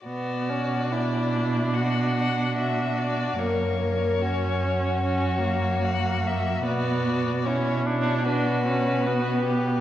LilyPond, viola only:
\new Staff \with { instrumentName = "Viola" } { \time 4/4 \key b \minor \tempo 4 = 73 b8 cis'8 d'2. | ais4 cis'4 cis'8 ais4. | b4 cis'8 d'8 d'8 cis'8 b4 | }